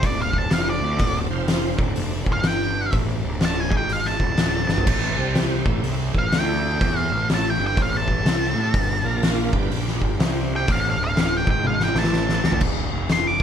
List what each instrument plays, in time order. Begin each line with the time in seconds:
Already playing: tonewheel organ C4 D4 F#4 A4
0.03 picked electric bass D1, lead electric guitar D5, kick, open hi-hat
0.22 lead electric guitar F5
0.33 kick
0.38 lead electric guitar A5
0.51 picked electric bass F1, lead electric guitar F5, snare, open hi-hat
0.70 lead electric guitar D5
0.81 picked electric bass D2
0.99 picked electric bass D1, kick, open hi-hat
1.30 picked electric bass F1, tonewheel organ F3 C4 F4 C5
1.48 snare, open hi-hat
1.77 picked electric bass D1, tonewheel organ C4 D4 F#4 A4, kick
1.96 picked electric bass F1, open hi-hat
2.26 picked electric bass D1, kick
2.33 lead electric guitar F5
2.43 picked electric bass G1, tonewheel organ G3 D4 G4 D5, snare, open hi-hat
2.47 lead electric guitar G5
2.92 picked electric bass A1, tonewheel organ D4 F#4 A4 C5, kick, open hi-hat
3.23 picked electric bass D1
3.41 snare, open hi-hat
3.45 lead electric guitar A5
3.60 lead electric guitar G#5
3.71 picked electric bass G#1, tonewheel organ G#3 D#4 G#4 D#5, kick
3.77 lead electric guitar G5
3.89 lead electric guitar F5, open hi-hat
4.05 lead electric guitar A5, snare
4.20 picked electric bass D1, tonewheel organ C4 D4 F#4 A4, kick
4.37 snare, open hi-hat
4.68 picked electric bass G1, snare
4.78 floor tom
4.86 picked electric bass A1, kick, open hi-hat, crash
5.17 picked electric bass C2, tonewheel organ G3 C4 G4 C5
5.35 snare, open hi-hat
5.65 picked electric bass A1, tonewheel organ C#4 E4 G4 A4, kick
5.83 picked electric bass C2, open hi-hat
6.15 picked electric bass A1, kick
6.19 lead electric guitar F5
6.32 picked electric bass D2, tonewheel organ A3 D4 A4 D5, lead electric guitar G5, snare, open hi-hat
6.81 picked electric bass E2, tonewheel organ E4 G4 A4 C#5, kick, open hi-hat
6.98 lead electric guitar F5
7.11 picked electric bass A1
7.30 snare, open hi-hat
7.34 lead electric guitar A5
7.50 lead electric guitar G5
7.58 picked electric bass G1
7.67 lead electric guitar G5
7.77 picked electric bass A1, kick, open hi-hat
7.82 lead electric guitar F5
7.97 lead electric guitar A5
8.08 kick
8.24 picked electric bass C2, snare, open hi-hat
8.55 picked electric bass A2
8.74 picked electric bass G1, kick, open hi-hat
9.03 picked electric bass A#1, tonewheel organ A#3 F4 A#4 F5
9.23 snare, open hi-hat
9.53 picked electric bass G1, tonewheel organ D4 F4 G4 B4, kick
9.70 picked electric bass A#1, open hi-hat
9.87 snare
10.02 picked electric bass G1, kick
10.19 picked electric bass C2, tonewheel organ G3 C4 G4 C5, snare, open hi-hat
10.56 lead electric guitar G5
10.66 picked electric bass A1, tonewheel organ C4 D4 F#4 A4, kick, open hi-hat
10.72 lead electric guitar F5
10.90 lead electric guitar F5
10.98 picked electric bass D1
11.04 lead electric guitar F5
11.17 lead electric guitar F5, snare, open hi-hat
11.37 lead electric guitar G5
11.46 picked electric bass G#1, tonewheel organ G#3 D#4 G#4 D#5, kick
11.51 lead electric guitar G5
11.65 lead electric guitar F5, high tom
11.80 lead electric guitar G5, snare
11.95 picked electric bass A1, tonewheel organ E4 G4 A4 C#5, lead electric guitar A5, snare
12.04 snare
12.13 snare
12.29 snare
12.44 picked electric bass D2, snare
12.52 floor tom
12.61 picked electric bass D1, kick, crash
12.92 picked electric bass F1
13.09 lead electric guitar C6, snare, open hi-hat
13.27 lead electric guitar D6